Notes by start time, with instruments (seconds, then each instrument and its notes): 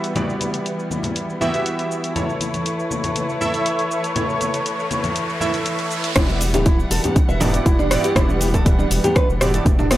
Already playing: string section E3 G3 B3 F#5, synth keys B3 E4 F#4 G4 E5
0.04 closed hi-hat, cabasa
0.15 synth keys B3 E4 F#4 G4 D5, string section E4, closed hi-hat, high conga, low conga, cabasa
0.30 cabasa
0.41 closed hi-hat, high conga, cabasa
0.54 closed hi-hat, cabasa
0.66 closed hi-hat, cabasa
0.79 cabasa
0.91 high conga, cabasa
1.03 closed hi-hat, low conga, cabasa
1.16 closed hi-hat, cabasa
1.30 cabasa
1.41 synth keys B3 E4 F#4 G4 E5, high conga, low conga, cabasa
1.54 closed hi-hat, cabasa
1.66 closed hi-hat, cabasa
1.79 closed hi-hat, cabasa
1.91 cabasa
2.04 closed hi-hat, cabasa
2.16 string section A3 B4 C#5, synth keys E4 A4 C#5, closed hi-hat, riser, high conga, low conga, cabasa
2.30 cabasa
2.40 closed hi-hat, high conga, cabasa
2.54 closed hi-hat, low conga, cabasa
2.66 closed hi-hat, cabasa
2.80 cabasa
2.91 high conga, cabasa
3.04 closed hi-hat, low conga, cabasa
3.16 closed hi-hat, high conga, cabasa
3.29 cabasa
3.41 synth keys E4 A4 E5, high conga, low conga, cabasa
3.54 closed hi-hat, cabasa
3.66 closed hi-hat, cabasa
3.79 closed hi-hat, cabasa
3.91 cabasa
4.04 closed hi-hat, cabasa
4.16 synth keys E4 A4 C#5, closed hi-hat, high conga, low conga, cabasa
4.29 cabasa
4.41 closed hi-hat, high conga, cabasa
4.54 closed hi-hat, cabasa
4.66 closed hi-hat, cabasa
4.80 cabasa
4.91 closed hi-hat, high conga, cabasa
5.04 closed hi-hat, low conga, cabasa
5.16 closed hi-hat, cabasa
5.29 cabasa
5.41 synth keys E4 A4 E5, high conga, low conga, cabasa
5.54 closed hi-hat, cabasa
5.66 closed hi-hat, cabasa
5.79 closed hi-hat, cabasa
5.91 closed hi-hat, cabasa
6.04 closed hi-hat, cabasa
6.16 analog synth bass E1, string section E3 G3 B3 F#5, synth keys B3 E4 F#4 G4 D5, nylon-string guitar E4, kick, cross-stick, closed hi-hat, crash, djembe tone, high conga, low conga, djembe bass, cabasa
6.29 nylon-string guitar E5, cabasa
6.41 open hi-hat, high conga, cabasa
6.54 analog synth bass D1, nylon-string guitar G4, closed hi-hat, djembe slap, djembe tone, high conga, low conga, cabasa
6.66 nylon-string guitar E4, kick, closed hi-hat, cabasa
6.80 cabasa
6.91 analog synth bass E1, nylon-string guitar A4, open hi-hat, cabasa
7.04 nylon-string guitar G4, closed hi-hat, djembe tone, low conga, cabasa
7.16 kick, closed hi-hat, high conga, djembe bass, cabasa
7.29 analog synth bass E1, nylon-string guitar E5, cabasa
7.40 synth keys B3 E4 F#4 G4 D5, nylon-string guitar A4, mid tom, open hi-hat, djembe slap, djembe tone, high conga, low conga, cabasa
7.54 closed hi-hat, cabasa
7.66 analog synth bass E1, nylon-string guitar E4, kick, closed hi-hat, cabasa
7.79 nylon-string guitar D4, cabasa
7.91 synth keys B3 E4 F#4 G4 D5, cross-stick, mid tom, open hi-hat, djembe tone, cabasa
8.04 nylon-string guitar G4, closed hi-hat, cabasa
8.16 analog synth bass E1, synth keys B3 E4 F#4 G4 D5, nylon-string guitar E4, kick, cross-stick, closed hi-hat, high conga, djembe bass, low conga, cabasa
8.29 djembe tone, cabasa
8.41 nylon-string guitar G4, open hi-hat, high conga, cabasa
8.54 analog synth bass D1, nylon-string guitar A4, kick, closed hi-hat, djembe slap, high conga, cabasa
8.66 kick, closed hi-hat, cabasa
8.78 nylon-string guitar D4, djembe tone, cabasa
8.91 analog synth bass E1, open hi-hat, cabasa
9.04 nylon-string guitar G4, closed hi-hat, low conga, cabasa
9.15 nylon-string guitar B4, kick, cross-stick, closed hi-hat, djembe tone, high conga, cabasa
9.29 analog synth bass E1, cabasa
9.41 synth keys B3 E4 F#4 G4 D5, nylon-string guitar G4, cross-stick, mid tom, open hi-hat, high conga, low conga, cabasa
9.54 nylon-string guitar A4, closed hi-hat, cabasa
9.65 analog synth bass E1, kick, closed hi-hat, djembe tone, high conga, djembe bass, cabasa
9.79 nylon-string guitar D4, mid tom, djembe slap, cabasa
9.91 nylon-string guitar B3, synth keys B3 E4 F#4 G4 D5, cross-stick, open hi-hat, cabasa